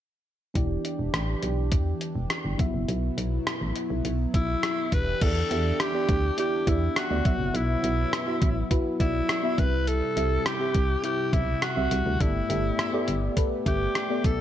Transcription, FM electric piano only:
0.54 1.39 E3 medium
0.54 2.55 B3 medium
0.54 2.55 E4 medium
0.54 2.56 G4 medium
0.54 2.56 D5 medium
2.58 3.43 B2 medium
2.58 4.88 B3 medium
2.58 4.88 E4 medium
2.58 4.88 F#4 medium
2.58 4.89 E5 medium
5.21 6.05 E3 medium
5.21 5.46 B3 medium
5.21 5.47 E4 medium
5.21 5.47 G4 medium
5.21 5.47 D5 medium
5.50 5.88 B3 medium
5.50 5.88 E4 medium
5.50 5.89 G4 medium
5.50 5.89 E5 medium
5.94 6.32 B3 medium
5.94 6.32 E4 medium
5.94 6.32 G4 medium
5.94 6.33 D5 medium
6.38 6.63 B3 medium
6.38 6.63 E4 medium
6.38 6.63 G4 medium
6.38 6.64 D5 medium
6.66 7.05 B3 medium
6.66 7.05 E4 medium
6.66 7.05 G4 medium
6.66 7.05 D5 medium
7.10 7.23 B3 medium
7.10 7.24 E4 medium
7.10 7.26 G4 medium
7.10 7.26 D5 medium
7.25 8.09 B2 medium
7.25 7.76 B3 medium
7.25 7.76 E4 medium
7.25 7.76 F#4 medium
7.25 7.76 E5 medium
7.83 8.21 B3 medium
7.83 8.21 E4 medium
7.83 8.22 F#4 medium
7.83 8.22 E5 medium
8.27 8.65 B3 medium
8.27 8.65 E4 medium
8.27 8.65 F#4 medium
8.27 8.65 E5 medium
8.70 8.96 B3 medium
8.70 8.96 E4 medium
8.70 8.96 F#4 medium
8.70 8.97 B4 medium
8.99 9.38 B3 medium
8.99 9.38 E4 medium
8.99 9.38 F#4 medium
8.99 9.38 D5 medium
9.43 9.58 B3 medium
9.43 9.57 E4 medium
9.43 9.58 F#4 medium
9.43 9.58 E5 medium
9.58 10.42 C3 medium
9.58 10.09 C4 medium
9.58 10.09 E4 medium
9.58 10.09 G4 medium
9.58 10.09 E5 medium
10.16 10.54 C4 medium
10.16 10.54 E4 medium
10.16 10.55 G4 medium
10.16 10.55 E5 medium
10.60 10.98 C4 medium
10.60 10.98 E4 medium
10.60 10.98 G4 medium
10.60 10.98 E5 medium
11.03 11.29 C4 medium
11.03 11.29 E4 medium
11.03 11.29 G4 medium
11.03 11.29 E5 medium
11.32 11.71 C4 medium
11.32 11.71 E4 medium
11.32 11.71 G4 medium
11.32 11.71 E5 medium
11.76 12.15 G3 medium
11.76 12.14 C4 medium
11.76 12.14 E4 medium
11.76 12.15 E5 medium
12.20 13.04 G2 medium
12.20 12.45 B3 medium
12.20 12.46 G4 medium
12.20 12.46 A4 medium
12.20 12.46 D5 medium
12.49 12.87 B3 medium
12.49 12.87 G4 medium
12.49 12.88 A4 medium
12.49 12.88 E5 medium
12.93 13.31 B3 medium
12.93 13.31 G4 medium
12.93 13.31 A4 medium
12.93 13.32 D5 medium
13.36 13.62 B3 medium
13.36 13.62 G4 medium
13.36 13.62 A4 medium
13.36 13.63 B4 medium
13.65 14.04 B3 medium
13.65 14.04 G4 medium
13.65 14.04 A4 medium
13.65 14.04 E5 medium
14.09 14.41 B3 medium
14.09 14.41 G4 medium
14.09 14.41 A4 medium
14.09 14.41 D5 medium

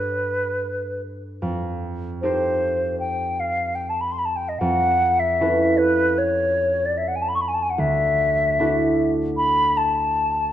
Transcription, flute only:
0.00 1.02 B4 medium
2.21 2.98 C5 medium
3.00 3.41 G5 medium
3.40 3.77 F5 medium
3.75 3.91 G5 soft
3.89 4.02 A5 soft
4.01 4.13 B5 soft
4.12 4.20 C6 medium
4.18 4.27 B5 soft
4.25 4.38 A5 soft
4.36 4.50 G5 soft
4.49 4.60 D#5 soft
4.59 5.21 F#5 medium
5.19 5.79 E5 medium
5.78 6.20 B4 medium
6.18 6.87 C#5 medium
6.85 6.99 D5 soft
6.97 7.09 E5 soft
7.08 7.17 F#5 soft
7.16 7.23 G#5 soft
7.22 7.30 A5 soft
7.28 7.37 B5 soft
7.35 7.43 C#6 soft
7.41 7.49 B5 soft
7.48 7.55 G#5 soft
7.54 7.64 A5 soft
7.62 7.71 G#5 soft
7.70 7.81 F#5 soft
7.79 9.11 E5 medium
9.37 9.78 B5 medium
9.77 10.53 A5 medium

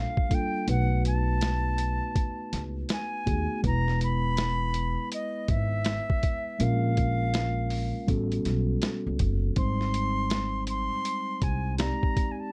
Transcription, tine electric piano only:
0.00 0.26 G3 medium
0.00 0.26 A#3 medium
0.00 0.27 D4 medium
0.00 0.27 F4 medium
0.00 0.27 A4 medium
0.29 0.67 G3 soft
0.29 0.67 A#3 soft
0.29 0.67 D4 soft
0.29 0.68 F4 soft
0.29 0.68 A4 medium
0.67 3.22 A3 medium
0.67 3.23 B3 medium
0.67 3.23 D#4 medium
0.67 3.23 F#4 medium
0.67 3.24 B4 medium
3.26 3.63 A3 medium
3.26 3.62 B3 soft
3.26 3.64 D#4 soft
3.26 3.64 F#4 soft
3.26 3.64 G#4 medium
3.62 6.55 G#3 medium
3.62 6.56 B3 medium
3.62 6.56 E4 medium
3.62 6.57 B4 medium
6.59 8.05 G#3 medium
6.59 8.05 A#3 medium
6.59 8.05 C#4 medium
6.59 8.06 F4 medium
6.59 8.06 A#4 medium
8.07 9.53 G3 medium
8.07 9.53 B3 medium
8.07 9.53 C#4 medium
8.07 9.54 F#4 medium
8.07 9.54 A4 medium
9.56 11.75 G3 medium
9.56 11.74 G#3 medium
9.56 11.75 C4 medium
9.56 11.75 D#4 medium
9.56 11.75 C5 medium
11.78 12.52 G#3 soft
11.78 12.51 C4 soft
11.78 12.52 D#4 soft
11.78 12.52 G4 soft
11.78 12.52 D5 medium

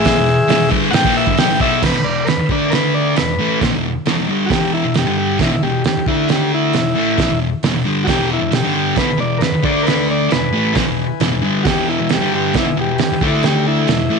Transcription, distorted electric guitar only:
0.05 0.16 A#2 medium
0.05 0.17 F3 loud
0.17 0.35 E2 medium
0.17 0.35 B2 medium
0.48 0.57 E2 medium
0.48 0.57 B2 loud
0.58 0.69 E2 medium
0.58 0.71 B2 medium
0.70 0.92 G2 medium
0.70 0.91 D3 loud
0.70 0.93 G3 loud
0.91 1.03 A2 loud
0.91 1.04 E3 medium
1.03 1.26 A#2 medium
1.03 1.27 F3 loud
1.03 1.27 A#3 loud
1.26 1.37 G2 loud
1.26 1.37 D3 loud
1.38 1.49 B2 medium
1.38 1.49 F#3 loud
1.49 1.59 A2 loud
1.49 1.60 E3 loud
1.59 1.82 B2 loud
1.59 1.82 F#3 loud
1.59 1.83 B3 loud
1.83 1.92 E2 medium
1.83 1.94 B2 loud
1.94 muted distorted electric guitar stroke soft
2.05 2.23 E2 medium
2.05 2.23 B2 medium
2.27 muted distorted electric guitar stroke medium
2.38 muted distorted electric guitar stroke medium
2.50 3.16 D3 medium
2.50 3.16 A3 medium
2.50 3.17 D4 medium
3.17 3.35 E2 medium
3.17 3.35 B2 medium
3.39 3.61 A2 medium
3.39 3.61 E3 loud
3.39 3.61 A3 loud
3.62 3.72 A#2 loud
3.62 3.72 F3 loud
3.74 3.91 E2 medium
3.74 3.91 B2 medium
4.06 4.16 E2 medium
4.06 4.17 B2 medium
4.18 4.28 E2 medium
4.18 4.29 B2 medium
4.28 4.49 G2 medium
4.28 4.50 D3 medium
4.28 4.50 G3 medium
4.50 4.83 E2 medium
4.50 4.83 B2 loud
4.50 4.84 E3 loud
4.84 4.95 E2 medium
4.84 4.95 B2 medium
4.96 5.06 E2 medium
4.96 5.06 B2 medium
5.06 5.39 G2 medium
5.06 5.39 D3 medium
5.06 5.40 G3 loud
5.40 5.50 E2 medium
5.40 5.51 B2 loud
5.52 muted distorted electric guitar stroke medium
5.63 5.80 E2 medium
5.63 5.80 B2 medium
5.85 muted distorted electric guitar stroke soft
5.97 muted distorted electric guitar stroke medium
6.07 6.73 D3 medium
6.07 6.74 A3 medium
6.07 6.74 D4 medium
6.75 6.92 E2 soft
6.75 6.92 B2 medium
6.95 7.17 A2 loud
6.95 7.18 E3 medium
6.95 7.18 A3 loud
7.17 7.28 A#2 loud
7.17 7.29 F3 loud
7.31 7.48 E2 medium
7.31 7.48 B2 medium
7.64 7.74 E2 medium
7.64 7.74 B2 loud
7.75 7.85 E2 medium
7.75 7.86 B2 medium
7.85 8.06 G2 medium
7.85 8.07 D3 medium
7.85 8.08 G3 medium
8.06 8.38 E2 medium
8.06 8.38 B2 loud
8.06 8.41 E3 loud
8.39 8.50 E2 medium
8.39 8.51 B2 medium
8.52 8.63 E2 soft
8.52 8.63 B2 medium
8.63 8.96 G2 medium
8.63 8.97 D3 medium
8.63 8.97 G3 loud
8.96 9.05 E2 loud
8.96 9.08 B2 loud
9.06 muted distorted electric guitar stroke medium
9.18 9.37 E2 medium
9.18 9.37 B2 medium
9.41 muted distorted electric guitar stroke medium
9.52 muted distorted electric guitar stroke medium
9.62 10.30 D3 medium
9.62 10.31 A3 medium
9.62 10.31 D4 medium
10.30 10.49 E2 medium
10.30 10.49 B2 medium
10.53 10.74 A2 medium
10.53 10.75 E3 medium
10.53 10.76 A3 loud
10.74 10.86 A#2 medium
10.74 10.86 F3 loud
10.86 11.04 E2 medium
10.86 11.05 B2 medium
11.21 11.30 E2 medium
11.21 11.30 B2 loud
11.31 11.42 E2 medium
11.31 11.42 B2 medium
11.42 11.64 G2 medium
11.42 11.65 D3 medium
11.42 11.65 G3 loud
11.66 11.97 E2 medium
11.66 11.98 B2 loud
11.66 11.99 E3 loud
11.99 12.09 E2 medium
11.99 12.09 B2 medium
12.10 12.20 E2 medium
12.10 12.21 B2 medium
12.20 12.53 G2 medium
12.20 12.54 D3 loud
12.20 12.54 G3 loud
12.54 12.64 E2 medium
12.54 12.65 B2 loud
12.65 muted distorted electric guitar stroke medium
12.77 12.95 E2 medium
12.77 12.95 B2 medium
12.99 muted distorted electric guitar stroke medium
13.12 muted distorted electric guitar stroke medium
13.22 13.88 D3 medium
13.22 13.89 A3 medium
13.22 13.89 D4 medium
13.88 14.06 E2 medium
13.88 14.06 B2 medium
14.10 14.19 A2 loud
14.10 14.19 E3 medium
14.10 14.19 A3 loud

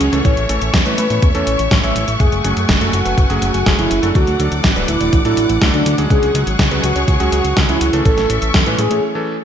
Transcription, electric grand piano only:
0.13 0.44 E3 medium
0.13 0.44 A3 medium
0.13 0.44 C#4 medium
0.13 0.44 A4 loud
0.49 0.69 E3 medium
0.49 0.69 A3 medium
0.49 0.69 C#4 medium
0.49 0.69 A4 medium
0.86 1.05 E3 medium
0.86 1.05 A3 medium
0.86 1.05 C#4 medium
0.86 1.05 B4 medium
1.10 1.31 E3 medium
1.10 1.31 A3 medium
1.10 1.31 C#4 medium
1.10 1.31 C#5 medium
1.35 1.54 E3 medium
1.35 1.54 A3 medium
1.35 1.54 C#4 medium
1.35 1.54 A4 loud
1.83 2.03 E3 medium
1.83 2.03 A3 medium
1.83 2.03 C#4 medium
1.83 2.03 C#5 loud
2.44 2.64 F#3 medium
2.44 2.64 A3 medium
2.44 2.64 C#4 medium
2.44 2.64 G#4 loud
2.81 3.00 F#3 medium
2.81 3.00 A3 medium
2.81 3.00 C#4 medium
2.81 3.00 A4 medium
3.05 3.26 F#3 medium
3.05 3.26 A3 medium
3.05 3.26 C#4 medium
3.05 3.26 B4 medium
3.30 3.49 F#3 loud
3.30 3.49 A3 medium
3.30 3.49 C#4 medium
3.30 3.49 G#4 loud
3.66 3.97 F#3 medium
3.66 3.97 A3 medium
3.66 3.97 C#4 medium
3.66 3.97 G#4 loud
4.03 4.34 F#3 medium
4.03 4.34 A3 medium
4.03 4.34 D4 medium
4.03 4.34 A4 loud
4.40 4.59 F#3 medium
4.40 4.59 A3 medium
4.40 4.59 D4 medium
4.40 4.59 A4 loud
4.76 4.95 F#3 medium
4.76 4.95 A3 medium
4.76 4.95 D4 medium
4.76 4.95 B4 loud
5.01 5.21 F#3 medium
5.01 5.21 A3 medium
5.01 5.21 D4 medium
5.01 5.21 D5 medium
5.25 5.44 F#3 medium
5.25 5.44 A3 medium
5.25 5.44 D4 medium
5.25 5.44 A4 loud
5.62 5.92 F#3 medium
5.62 5.92 A3 medium
5.62 5.92 D4 medium
5.62 5.92 A4 loud
5.98 6.29 F#3 medium
5.98 6.29 G#3 medium
5.98 6.29 C#4 medium
5.98 6.29 G#4 loud
6.35 6.54 F#3 medium
6.35 6.54 G#3 medium
6.35 6.54 C#4 medium
6.35 6.54 G#4 loud
6.71 6.91 F#3 medium
6.71 6.91 G#3 medium
6.71 6.91 C#4 medium
6.71 6.91 B4 loud
6.96 7.16 F#3 medium
6.96 7.16 G#3 medium
6.96 7.16 C#4 medium
6.96 7.16 C#5 medium
7.20 7.39 F#3 loud
7.20 7.39 G#3 medium
7.20 7.39 C#4 medium
7.20 7.39 G#4 loud
7.57 7.87 F#3 loud
7.57 7.87 G#3 medium
7.57 7.87 C#4 medium
7.57 7.87 G#4 loud
7.93 8.24 E3 medium
7.93 8.24 A3 medium
7.93 8.24 C#4 medium
7.93 8.24 A4 loud
8.30 8.49 E3 medium
8.30 8.49 A3 medium
8.30 8.49 C#4 medium
8.30 8.49 A4 loud
8.66 8.86 E3 medium
8.66 8.86 A3 medium
8.66 8.86 C#4 medium
8.66 8.86 B4 loud
8.91 9.12 E3 medium
8.91 9.12 A3 medium
8.91 9.12 C#4 medium
8.91 9.12 C#5 medium
9.15 9.34 E3 loud
9.15 9.34 A3 medium
9.15 9.34 C#4 medium
9.15 9.34 A4 loud

